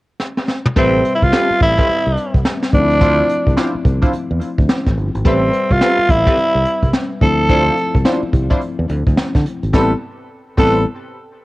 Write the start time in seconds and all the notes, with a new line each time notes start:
0.21 snare
0.38 snare
0.49 snare
0.66 mid tom
0.76 A1 G3 C4 G4 A4 B4 E5, kick, closed hi-hat
1.05 closed hi-hat
1.15 E4
1.22 C2 F4, kick, closed hi-hat
1.32 C4 G4 A4 B4, snare, closed hi-hat
1.50 muted fingered electric bass stroke
1.61 A1 E4, kick, closed hi-hat
1.78 C4 G4 A4 B4, kick, closed hi-hat
1.89 muted fingered electric bass stroke, closed hi-hat
2.06 C2
2.17 closed hi-hat
2.34 C2, kick, closed hi-hat
2.45 snare, closed hi-hat
2.62 snare
2.72 D2 F3 A3 C4 D4 D#4, kick, closed hi-hat
2.81 E4
2.90 closed hi-hat
3.00 D4 E4 F4 C5, kick, closed hi-hat
3.29 closed hi-hat
3.46 C2, kick, closed hi-hat
3.56 D4 E4 F4 C5, snare, closed hi-hat
3.75 muted fingered electric bass stroke
3.85 C2, kick, closed hi-hat
4.02 D4 E4 F4 C5, kick, closed hi-hat
4.13 muted fingered electric bass stroke, closed hi-hat
4.31 E2
4.41 closed hi-hat
4.58 D2, kick, closed hi-hat
4.69 snare, closed hi-hat
4.86 A1, kick, snare
4.97 G1, closed hi-hat
5.14 G#1, closed hi-hat
5.25 A1 G3 C4 G4 A4 B4 E5, kick, closed hi-hat
5.53 closed hi-hat
5.71 C2 F4, kick, closed hi-hat
5.81 C4 G4 A4 B4, snare, closed hi-hat
5.99 muted fingered electric bass stroke
6.09 A1 E4, kick, closed hi-hat
6.26 C4 G4 A4 B4, kick, closed hi-hat
6.37 muted fingered electric bass stroke, closed hi-hat
6.55 C2
6.65 closed hi-hat
6.83 C2, kick, closed hi-hat
6.93 snare, closed hi-hat
7.21 D2 F3 A3 C4 E4 A4, kick, closed hi-hat
7.39 closed hi-hat
7.49 D4 E4 F4 C5, kick, closed hi-hat
7.77 closed hi-hat
7.95 C2, kick, closed hi-hat
8.05 D4 E4 F4 C5, snare, closed hi-hat
8.23 muted fingered electric bass stroke
8.33 C2, kick, closed hi-hat
8.50 D4 E4 F4 C5, kick, closed hi-hat
8.61 closed hi-hat
8.79 E2
8.89 D2, closed hi-hat
9.07 D2, kick, closed hi-hat
9.17 snare, closed hi-hat
9.35 D3, kick, snare
9.46 closed hi-hat
9.63 G#1, closed hi-hat
9.73 A1 G3 B3 C4 E4 G4 A4 B4, kick, snare
10.57 A1 G3 B3 C4 E4 G4 A4 B4, kick, crash